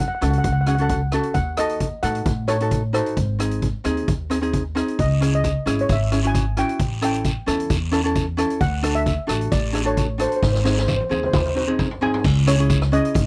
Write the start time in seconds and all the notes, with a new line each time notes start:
0.01 F#5
0.08 F#5
0.15 F#5
0.21 C#2 C#4 F#4 A4 F#5, cross-stick, closed hi-hat
0.31 F#5, closed hi-hat
0.38 F#5
0.44 C#2 F#5, kick, closed hi-hat
0.52 F#5
0.61 F#5
0.66 C#4 F#4 G#4 F#5, cross-stick, closed hi-hat
0.75 C#4 F#5, closed hi-hat
0.80 F#4 A4 F#5
0.89 F#5, kick, closed hi-hat
1.12 C#4 F#4 A4, cross-stick, closed hi-hat
1.23 closed hi-hat
1.34 D#2 F#5, kick, closed hi-hat
1.57 D#4 F#4 A4 D#5, cross-stick, closed hi-hat
1.69 closed hi-hat
1.80 kick, closed hi-hat
2.03 A2 D#4 F#4 A4 F#5, cross-stick, closed hi-hat
2.15 closed hi-hat
2.25 A2, kick, closed hi-hat
2.47 D#4 F#4 A4 C#5, cross-stick, closed hi-hat
2.60 D#4 F#4 A4, closed hi-hat
2.71 kick, closed hi-hat
2.93 D#4 F#4 A4 C5, cross-stick, closed hi-hat
3.06 closed hi-hat
3.17 G#1, kick, closed hi-hat
3.39 C4 D#4 G#4, cross-stick, closed hi-hat
3.51 closed hi-hat
3.62 kick, closed hi-hat
3.84 D#2 C4 D#4 G#4, cross-stick, closed hi-hat
3.97 closed hi-hat
4.08 D#2, kick, closed hi-hat
4.30 C4 D#4 G#4, cross-stick, closed hi-hat
4.41 C4 D#4 G#4, closed hi-hat
4.53 kick, closed hi-hat
4.75 C4 D#4 G#4, cross-stick, closed hi-hat
4.88 closed hi-hat
4.99 C#2 D#5, kick, closed hi-hat, long guiro
5.21 C#4 E4 G#4, cross-stick, closed hi-hat
5.33 D#5, closed hi-hat
5.44 kick, closed hi-hat, short guiro
5.66 G#1 C#4 E4 G#4, cross-stick, closed hi-hat, short guiro
5.79 C#5, closed hi-hat
5.89 G#1 E5, kick, closed hi-hat, short guiro, long guiro
6.12 C#4 E4 G#4, cross-stick, closed hi-hat
6.23 C#4 E4 F#4 G#5, closed hi-hat
6.35 kick, closed hi-hat, short guiro
6.57 C#4 E4 F#4 G5, cross-stick, closed hi-hat
6.69 closed hi-hat
6.79 A1, kick, closed hi-hat, long guiro
7.01 C#4 E4 A4 G5, cross-stick, closed hi-hat
7.14 closed hi-hat
7.24 kick, closed hi-hat, short guiro
7.46 E2 C#4 E4 A4, cross-stick, closed hi-hat, short guiro
7.60 closed hi-hat
7.70 E2, kick, closed hi-hat, short guiro, long guiro
7.91 C#4 E4 A4, cross-stick, closed hi-hat
8.04 C#4 E4 A4, closed hi-hat
8.15 kick, closed hi-hat, short guiro
8.37 C#4 E4 A4, cross-stick, closed hi-hat
8.50 closed hi-hat
8.60 D2 F#5, kick, closed hi-hat, long guiro
8.82 D4 F#4 A4, cross-stick, closed hi-hat
8.95 E5, closed hi-hat
9.06 kick, closed hi-hat, short guiro
9.27 A1 D4 F#4 A4, cross-stick, closed hi-hat, short guiro
9.41 closed hi-hat
9.52 A1 D5, kick, closed hi-hat, short guiro, long guiro
9.72 D4 F#4 G#4, cross-stick, closed hi-hat
9.84 D4 F#4 A4 C#5, closed hi-hat
9.97 kick, closed hi-hat, short guiro
10.18 D4 F#4 A4 C5, cross-stick, closed hi-hat
10.29 C5, closed hi-hat
10.36 C5
10.42 G#1 C5, kick, snare, long guiro
10.52 C5, snare
10.60 C5
10.64 C4 D#4 G#4 C5, snare
10.74 C5, snare
10.82 C5
10.88 C5, kick, high tom, short guiro
10.96 C5, high tom
11.04 C5
11.09 D#2 C4 D#4 G#4 C5, high tom, short guiro
11.19 C5
11.23 C5, mid tom
11.33 D#2 C5, kick, mid tom, short guiro, long guiro
11.42 C5, mid tom
11.49 C5
11.55 C4 D#4 F#4 C5, mid tom
11.67 C4 D#4 G#4, mid tom
11.79 kick, mid tom, short guiro
11.91 floor tom
12.01 C4 D#4 G#4 G#5, floor tom
12.14 floor tom
12.24 C#2, kick, crash, long guiro
12.46 C#4 E4 G#4 C#5, cross-stick, closed hi-hat
12.58 C#4 E4 G#4, closed hi-hat
12.70 kick, closed hi-hat, short guiro
12.82 cross-stick
12.92 C#4 E4 G#4 D#5, closed hi-hat
13.05 closed hi-hat
13.15 G#1, kick, closed hi-hat, long guiro